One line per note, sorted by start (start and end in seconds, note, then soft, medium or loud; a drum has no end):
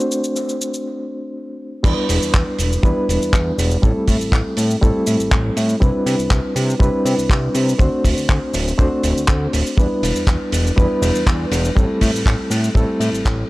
0.00 1.81 A3 medium
0.00 1.81 C4 medium
0.00 1.82 D4 medium
0.00 1.82 F#4 medium
0.00 1.82 C5 medium
0.00 cabasa soft
0.11 cabasa medium
0.24 cabasa soft
0.36 cabasa medium
0.49 cabasa soft
0.61 cabasa medium
0.74 cabasa soft
1.83 1.94 E2 loud
1.83 2.80 G3 medium
1.83 2.80 B3 medium
1.83 2.81 D4 medium
1.83 2.81 E4 medium
1.83 2.81 B4 loud
1.83 kick loud
1.83 crash loud
1.83 cabasa medium
2.09 2.19 E1 medium
2.09 open hi-hat loud
2.09 cabasa medium
2.22 2.32 E2 soft
2.22 cabasa medium
2.34 2.44 E2 medium
2.34 kick loud
2.34 clap loud
2.34 cabasa medium
2.59 2.78 E1 medium
2.59 open hi-hat loud
2.59 cabasa loud
2.73 cabasa medium
2.83 2.93 E2 medium
2.83 3.79 G3 loud
2.83 3.80 B3 medium
2.83 3.80 D4 medium
2.83 3.80 E4 medium
2.83 3.81 B4 loud
2.83 kick loud
2.83 cabasa soft
3.09 3.18 E1 loud
3.09 open hi-hat loud
3.09 cabasa medium
3.21 3.31 E2 soft
3.21 cabasa medium
3.33 3.52 E2 medium
3.33 kick loud
3.33 clap loud
3.33 cabasa soft
3.58 3.77 E1 medium
3.58 open hi-hat loud
3.58 cabasa medium
3.71 cabasa medium
3.82 3.93 A1 loud
3.82 4.79 G3 medium
3.82 4.79 A3 medium
3.82 4.79 C4 medium
3.82 4.79 E4 medium
3.82 4.80 A4 loud
3.82 kick loud
3.82 cabasa soft
4.08 4.17 A2 loud
4.08 kick medium
4.08 open hi-hat loud
4.08 cabasa medium
4.20 4.30 A1 soft
4.20 cabasa medium
4.32 4.42 A1 medium
4.32 kick loud
4.32 clap loud
4.32 cabasa medium
4.57 4.76 A2 medium
4.57 open hi-hat loud
4.57 cabasa medium
4.71 cabasa medium
4.81 4.92 A1 medium
4.81 5.78 G3 loud
4.81 5.78 A3 medium
4.81 5.78 C4 medium
4.81 5.79 E4 medium
4.81 5.79 A4 loud
4.81 kick loud
4.81 cabasa medium
5.07 5.17 A2 loud
5.07 open hi-hat loud
5.07 cabasa medium
5.20 5.30 A1 soft
5.20 cabasa medium
5.32 5.51 A1 medium
5.32 kick loud
5.32 clap loud
5.32 cabasa medium
5.57 5.76 A2 loud
5.57 open hi-hat loud
5.57 cabasa medium
5.69 cabasa medium
5.80 5.91 C2 loud
5.80 6.77 G3 medium
5.80 6.77 C4 medium
5.80 6.77 D4 medium
5.80 6.78 E4 medium
5.80 6.78 B4 loud
5.80 kick loud
5.80 cabasa medium
6.06 6.16 C3 medium
6.06 open hi-hat loud
6.06 cabasa medium
6.19 6.29 C2 soft
6.19 cabasa medium
6.30 6.40 C2 medium
6.30 kick loud
6.30 clap loud
6.30 cabasa medium
6.56 6.75 C3 medium
6.56 open hi-hat loud
6.56 cabasa medium
6.70 cabasa medium
6.79 6.90 C2 medium
6.79 7.76 G3 loud
6.79 7.76 C4 medium
6.79 7.77 D4 medium
6.79 7.77 E4 medium
6.79 7.77 B4 loud
6.79 kick loud
6.79 cabasa medium
7.05 7.15 C3 loud
7.05 open hi-hat loud
7.05 cabasa medium
7.18 7.28 C2 soft
7.18 cabasa medium
7.30 7.49 C2 medium
7.30 kick loud
7.30 clap loud
7.30 cabasa medium
7.55 7.74 C3 medium
7.55 open hi-hat loud
7.55 cabasa medium
7.69 cabasa medium
7.78 7.89 D2 loud
7.78 8.75 A3 medium
7.78 8.75 C4 medium
7.78 8.76 D4 medium
7.78 8.76 F#4 medium
7.78 8.76 C5 loud
7.78 kick loud
7.78 cabasa medium
8.04 8.14 D1 medium
8.04 kick medium
8.04 open hi-hat loud
8.04 cabasa medium
8.17 8.27 D2 soft
8.17 cabasa medium
8.29 8.39 D2 medium
8.29 kick loud
8.29 clap loud
8.29 cabasa soft
8.54 8.73 D1 medium
8.54 open hi-hat loud
8.54 cabasa medium
8.68 cabasa medium
8.78 8.88 D2 loud
8.78 9.74 A3 loud
8.78 9.75 C4 medium
8.78 9.75 D4 medium
8.78 9.75 F#4 medium
8.78 9.76 C5 loud
8.78 kick loud
8.78 cabasa soft
9.04 9.13 D1 medium
9.04 open hi-hat loud
9.04 cabasa medium
9.16 9.26 D2 soft
9.16 cabasa medium
9.28 9.47 D2 loud
9.28 kick loud
9.28 clap loud
9.28 cabasa medium
9.53 9.63 D1 medium
9.53 open hi-hat loud
9.53 cabasa medium
9.67 cabasa medium
9.77 9.87 E2 loud
9.77 10.74 G3 medium
9.77 10.74 B3 medium
9.77 10.74 D4 medium
9.77 10.75 E4 medium
9.77 10.75 B4 loud
9.77 kick loud
9.77 cabasa soft
10.03 10.12 E1 loud
10.03 open hi-hat loud
10.03 ride medium
10.03 cabasa medium
10.15 10.25 E2 soft
10.15 cabasa medium
10.27 10.37 E2 medium
10.27 kick loud
10.27 clap loud
10.27 cabasa soft
10.52 10.71 E1 medium
10.52 open hi-hat loud
10.52 ride medium
10.52 cabasa medium
10.67 cabasa medium
10.76 10.87 E2 medium
10.76 11.73 G3 loud
10.76 11.73 B3 medium
10.76 11.73 D4 medium
10.76 11.74 E4 medium
10.76 11.74 B4 loud
10.76 kick loud
10.76 cabasa soft
11.02 11.12 E1 loud
11.02 open hi-hat loud
11.02 ride medium
11.02 cabasa medium
11.14 11.24 E2 soft
11.14 cabasa medium
11.27 11.46 E2 medium
11.27 kick loud
11.27 clap loud
11.27 cabasa medium
11.51 11.71 E1 loud
11.51 open hi-hat loud
11.51 ride medium
11.51 cabasa medium
11.65 cabasa medium
11.75 11.86 A1 loud
11.75 12.72 G3 medium
11.75 12.72 A3 medium
11.75 12.73 C4 medium
11.75 12.73 E4 medium
11.75 12.73 A4 loud
11.75 kick loud
11.75 cabasa medium
12.01 12.11 A2 medium
12.01 kick medium
12.01 open hi-hat loud
12.01 ride medium
12.01 cabasa medium
12.14 12.23 A1 soft
12.14 cabasa medium
12.26 12.35 A1 medium
12.26 kick loud
12.26 clap loud
12.26 cabasa medium
12.50 12.70 A2 medium
12.50 open hi-hat loud
12.50 ride medium
12.50 cabasa medium
12.64 cabasa medium
12.75 12.85 A1 medium
12.75 13.50 G3 medium
12.75 13.50 A3 medium
12.75 13.50 C4 medium
12.75 13.50 E4 medium
12.75 13.50 A4 loud
12.75 kick loud
12.75 cabasa medium
13.00 13.10 A2 loud
13.00 open hi-hat loud
13.00 ride medium
13.00 cabasa medium
13.13 13.23 A1 soft
13.13 cabasa medium
13.25 13.44 A1 medium
13.25 kick loud
13.25 clap loud
13.25 cabasa medium